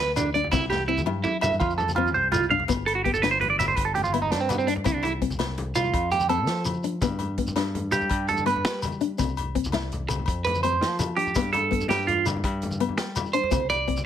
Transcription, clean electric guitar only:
0, 0, Header, 1, 3, 480
1, 0, Start_track
1, 0, Tempo, 360794
1, 706, Time_signature, 12, 3, 24, 8
1, 18701, End_track
2, 0, Start_track
2, 0, Title_t, "Clean electric guitar"
2, 0, Program_c, 0, 27
2, 0, Note_on_c, 0, 71, 87
2, 151, Note_off_c, 0, 71, 0
2, 218, Note_on_c, 0, 62, 74
2, 387, Note_off_c, 0, 62, 0
2, 454, Note_on_c, 0, 74, 78
2, 624, Note_off_c, 0, 74, 0
2, 687, Note_on_c, 0, 64, 92
2, 859, Note_off_c, 0, 64, 0
2, 927, Note_on_c, 0, 67, 73
2, 1099, Note_off_c, 0, 67, 0
2, 1170, Note_on_c, 0, 64, 71
2, 1341, Note_off_c, 0, 64, 0
2, 1645, Note_on_c, 0, 64, 73
2, 1817, Note_off_c, 0, 64, 0
2, 1890, Note_on_c, 0, 76, 76
2, 2060, Note_off_c, 0, 76, 0
2, 2123, Note_on_c, 0, 65, 78
2, 2295, Note_off_c, 0, 65, 0
2, 2365, Note_on_c, 0, 69, 77
2, 2536, Note_off_c, 0, 69, 0
2, 2606, Note_on_c, 0, 65, 75
2, 2777, Note_off_c, 0, 65, 0
2, 2851, Note_on_c, 0, 72, 84
2, 3020, Note_off_c, 0, 72, 0
2, 3084, Note_on_c, 0, 65, 76
2, 3255, Note_off_c, 0, 65, 0
2, 3332, Note_on_c, 0, 77, 83
2, 3500, Note_off_c, 0, 77, 0
2, 3809, Note_on_c, 0, 69, 91
2, 3920, Note_off_c, 0, 69, 0
2, 3925, Note_on_c, 0, 66, 76
2, 4044, Note_off_c, 0, 66, 0
2, 4049, Note_on_c, 0, 67, 73
2, 4168, Note_off_c, 0, 67, 0
2, 4173, Note_on_c, 0, 69, 74
2, 4285, Note_on_c, 0, 71, 77
2, 4293, Note_off_c, 0, 69, 0
2, 4399, Note_off_c, 0, 71, 0
2, 4404, Note_on_c, 0, 72, 83
2, 4527, Note_off_c, 0, 72, 0
2, 4533, Note_on_c, 0, 71, 84
2, 4649, Note_off_c, 0, 71, 0
2, 4654, Note_on_c, 0, 74, 81
2, 4770, Note_off_c, 0, 74, 0
2, 4775, Note_on_c, 0, 76, 94
2, 4890, Note_off_c, 0, 76, 0
2, 4895, Note_on_c, 0, 72, 80
2, 5010, Note_off_c, 0, 72, 0
2, 5010, Note_on_c, 0, 71, 72
2, 5121, Note_on_c, 0, 69, 73
2, 5131, Note_off_c, 0, 71, 0
2, 5246, Note_off_c, 0, 69, 0
2, 5252, Note_on_c, 0, 67, 87
2, 5365, Note_off_c, 0, 67, 0
2, 5370, Note_on_c, 0, 65, 74
2, 5493, Note_off_c, 0, 65, 0
2, 5493, Note_on_c, 0, 64, 79
2, 5607, Note_off_c, 0, 64, 0
2, 5613, Note_on_c, 0, 63, 72
2, 5732, Note_off_c, 0, 63, 0
2, 5732, Note_on_c, 0, 62, 74
2, 5852, Note_off_c, 0, 62, 0
2, 5859, Note_on_c, 0, 60, 64
2, 5977, Note_off_c, 0, 60, 0
2, 5977, Note_on_c, 0, 59, 72
2, 6091, Note_off_c, 0, 59, 0
2, 6097, Note_on_c, 0, 60, 72
2, 6214, Note_off_c, 0, 60, 0
2, 6215, Note_on_c, 0, 62, 85
2, 6328, Note_off_c, 0, 62, 0
2, 6463, Note_on_c, 0, 64, 76
2, 6576, Note_off_c, 0, 64, 0
2, 6576, Note_on_c, 0, 62, 68
2, 6694, Note_off_c, 0, 62, 0
2, 6695, Note_on_c, 0, 64, 77
2, 6813, Note_off_c, 0, 64, 0
2, 7657, Note_on_c, 0, 65, 75
2, 8104, Note_off_c, 0, 65, 0
2, 8136, Note_on_c, 0, 67, 89
2, 8368, Note_off_c, 0, 67, 0
2, 8374, Note_on_c, 0, 69, 91
2, 8823, Note_off_c, 0, 69, 0
2, 10540, Note_on_c, 0, 67, 78
2, 10987, Note_off_c, 0, 67, 0
2, 11024, Note_on_c, 0, 69, 93
2, 11256, Note_off_c, 0, 69, 0
2, 11261, Note_on_c, 0, 71, 90
2, 11708, Note_off_c, 0, 71, 0
2, 13897, Note_on_c, 0, 71, 86
2, 14134, Note_off_c, 0, 71, 0
2, 14141, Note_on_c, 0, 72, 81
2, 14590, Note_off_c, 0, 72, 0
2, 14854, Note_on_c, 0, 67, 88
2, 15306, Note_off_c, 0, 67, 0
2, 15334, Note_on_c, 0, 69, 95
2, 15786, Note_off_c, 0, 69, 0
2, 15819, Note_on_c, 0, 67, 83
2, 16055, Note_off_c, 0, 67, 0
2, 16059, Note_on_c, 0, 65, 78
2, 16295, Note_off_c, 0, 65, 0
2, 17739, Note_on_c, 0, 72, 89
2, 18187, Note_off_c, 0, 72, 0
2, 18222, Note_on_c, 0, 74, 99
2, 18669, Note_off_c, 0, 74, 0
2, 18701, End_track
3, 0, Start_track
3, 0, Title_t, "Muted clean electric guitar strokes"
3, 6333, Note_on_c, 9, 29, 69
3, 6466, Note_off_c, 9, 29, 0
3, 13417, Note_on_c, 9, 29, 84
3, 13550, Note_off_c, 9, 29, 0
3, 18701, End_track
0, 0, End_of_file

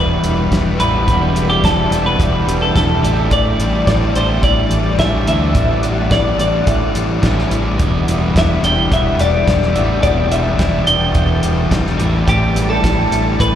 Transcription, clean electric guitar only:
0, 0, Header, 1, 2, 480
1, 0, Start_track
1, 0, Key_signature, 1, "minor"
1, 0, Tempo, 560224
1, 921, Time_signature, 4, 2, 24, 8
1, 11610, End_track
2, 0, Start_track
2, 0, Title_t, "Clean electric guitar"
2, 0, Program_c, 0, 27
2, 0, Note_on_c, 0, 71, 86
2, 675, Note_off_c, 0, 71, 0
2, 685, Note_on_c, 0, 71, 88
2, 1248, Note_off_c, 0, 71, 0
2, 1282, Note_on_c, 0, 67, 71
2, 1405, Note_off_c, 0, 67, 0
2, 1412, Note_on_c, 0, 69, 85
2, 1762, Note_off_c, 0, 69, 0
2, 1766, Note_on_c, 0, 71, 89
2, 2241, Note_off_c, 0, 71, 0
2, 2244, Note_on_c, 0, 69, 77
2, 2355, Note_off_c, 0, 69, 0
2, 2365, Note_on_c, 0, 69, 84
2, 2847, Note_off_c, 0, 69, 0
2, 2850, Note_on_c, 0, 74, 92
2, 3310, Note_off_c, 0, 74, 0
2, 3321, Note_on_c, 0, 74, 83
2, 3562, Note_off_c, 0, 74, 0
2, 3565, Note_on_c, 0, 72, 77
2, 3799, Note_off_c, 0, 72, 0
2, 3803, Note_on_c, 0, 74, 82
2, 4276, Note_off_c, 0, 74, 0
2, 4280, Note_on_c, 0, 76, 96
2, 4517, Note_off_c, 0, 76, 0
2, 4527, Note_on_c, 0, 76, 89
2, 5241, Note_off_c, 0, 76, 0
2, 5244, Note_on_c, 0, 74, 85
2, 5481, Note_off_c, 0, 74, 0
2, 5491, Note_on_c, 0, 74, 75
2, 5931, Note_off_c, 0, 74, 0
2, 7184, Note_on_c, 0, 76, 83
2, 7395, Note_off_c, 0, 76, 0
2, 7410, Note_on_c, 0, 79, 95
2, 7627, Note_off_c, 0, 79, 0
2, 7655, Note_on_c, 0, 76, 89
2, 7888, Note_on_c, 0, 74, 86
2, 7893, Note_off_c, 0, 76, 0
2, 8584, Note_off_c, 0, 74, 0
2, 8594, Note_on_c, 0, 74, 87
2, 8841, Note_on_c, 0, 76, 92
2, 8843, Note_off_c, 0, 74, 0
2, 9311, Note_off_c, 0, 76, 0
2, 9315, Note_on_c, 0, 79, 84
2, 10243, Note_off_c, 0, 79, 0
2, 10529, Note_on_c, 0, 67, 75
2, 10877, Note_off_c, 0, 67, 0
2, 10880, Note_on_c, 0, 69, 80
2, 11487, Note_on_c, 0, 71, 88
2, 11499, Note_off_c, 0, 69, 0
2, 11610, Note_off_c, 0, 71, 0
2, 11610, End_track
0, 0, End_of_file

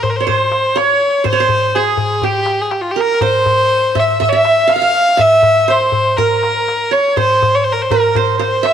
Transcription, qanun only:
0, 0, Header, 1, 2, 480
1, 0, Start_track
1, 0, Tempo, 492611
1, 1223, Time_signature, 4, 2, 24, 8
1, 8510, End_track
2, 0, Start_track
2, 0, Title_t, "Qanun"
2, 0, Program_c, 0, 107
2, 0, Note_on_c, 0, 68, 62
2, 0, Note_on_c, 0, 70, 65
2, 199, Note_on_c, 0, 73, 56
2, 242, Note_off_c, 0, 68, 0
2, 260, Note_on_c, 0, 72, 73
2, 318, Note_off_c, 0, 73, 0
2, 424, Note_off_c, 0, 70, 0
2, 737, Note_on_c, 0, 73, 78
2, 795, Note_off_c, 0, 72, 0
2, 1209, Note_on_c, 0, 72, 74
2, 1267, Note_off_c, 0, 73, 0
2, 1292, Note_on_c, 0, 73, 67
2, 1351, Note_off_c, 0, 72, 0
2, 1365, Note_on_c, 0, 72, 74
2, 1423, Note_off_c, 0, 73, 0
2, 1711, Note_on_c, 0, 68, 68
2, 2176, Note_on_c, 0, 67, 56
2, 2234, Note_off_c, 0, 68, 0
2, 2393, Note_off_c, 0, 72, 0
2, 2883, Note_on_c, 0, 70, 55
2, 3134, Note_on_c, 0, 72, 72
2, 3399, Note_off_c, 0, 67, 0
2, 3850, Note_on_c, 0, 76, 71
2, 3986, Note_off_c, 0, 70, 0
2, 4088, Note_off_c, 0, 76, 0
2, 4092, Note_on_c, 0, 76, 80
2, 4163, Note_off_c, 0, 72, 0
2, 4210, Note_off_c, 0, 76, 0
2, 4214, Note_on_c, 0, 76, 77
2, 4555, Note_on_c, 0, 77, 82
2, 4613, Note_off_c, 0, 76, 0
2, 4637, Note_on_c, 0, 76, 71
2, 4690, Note_off_c, 0, 77, 0
2, 4694, Note_on_c, 0, 77, 78
2, 4752, Note_off_c, 0, 76, 0
2, 5039, Note_on_c, 0, 76, 80
2, 5098, Note_off_c, 0, 77, 0
2, 5534, Note_on_c, 0, 72, 74
2, 5938, Note_off_c, 0, 76, 0
2, 6023, Note_on_c, 0, 70, 64
2, 6562, Note_off_c, 0, 72, 0
2, 6735, Note_on_c, 0, 73, 59
2, 6987, Note_on_c, 0, 72, 61
2, 7045, Note_off_c, 0, 73, 0
2, 7126, Note_off_c, 0, 70, 0
2, 7712, Note_on_c, 0, 70, 67
2, 7950, Note_off_c, 0, 72, 0
2, 7954, Note_on_c, 0, 72, 77
2, 8175, Note_off_c, 0, 72, 0
2, 8179, Note_on_c, 0, 72, 72
2, 8408, Note_on_c, 0, 76, 78
2, 8510, Note_off_c, 0, 70, 0
2, 8510, Note_off_c, 0, 72, 0
2, 8510, Note_off_c, 0, 76, 0
2, 8510, End_track
0, 0, End_of_file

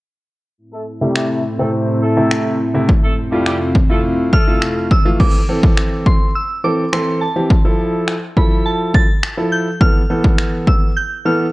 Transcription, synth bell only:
0, 0, Header, 1, 2, 480
1, 0, Start_track
1, 0, Key_signature, 0, "minor"
1, 0, Tempo, 576923
1, 483, Time_signature, 4, 2, 24, 8
1, 9588, End_track
2, 0, Start_track
2, 0, Title_t, "Synth bell"
2, 0, Program_c, 0, 98
2, 3605, Note_on_c, 0, 89, 92
2, 4086, Note_on_c, 0, 88, 82
2, 4099, Note_off_c, 0, 89, 0
2, 4324, Note_on_c, 0, 86, 92
2, 4332, Note_off_c, 0, 88, 0
2, 5010, Note_off_c, 0, 86, 0
2, 5043, Note_on_c, 0, 84, 80
2, 5285, Note_on_c, 0, 88, 93
2, 5290, Note_off_c, 0, 84, 0
2, 5507, Note_off_c, 0, 88, 0
2, 5523, Note_on_c, 0, 86, 84
2, 5761, Note_on_c, 0, 84, 88
2, 5771, Note_off_c, 0, 86, 0
2, 5985, Note_off_c, 0, 84, 0
2, 6001, Note_on_c, 0, 81, 84
2, 6929, Note_off_c, 0, 81, 0
2, 6963, Note_on_c, 0, 83, 87
2, 7186, Note_off_c, 0, 83, 0
2, 7202, Note_on_c, 0, 81, 88
2, 7426, Note_off_c, 0, 81, 0
2, 7443, Note_on_c, 0, 93, 106
2, 7924, Note_on_c, 0, 91, 96
2, 7937, Note_off_c, 0, 93, 0
2, 8147, Note_off_c, 0, 91, 0
2, 8161, Note_on_c, 0, 89, 105
2, 8884, Note_on_c, 0, 88, 90
2, 8904, Note_off_c, 0, 89, 0
2, 9124, Note_on_c, 0, 91, 101
2, 9131, Note_off_c, 0, 88, 0
2, 9347, Note_off_c, 0, 91, 0
2, 9366, Note_on_c, 0, 89, 94
2, 9588, Note_off_c, 0, 89, 0
2, 9588, End_track
0, 0, End_of_file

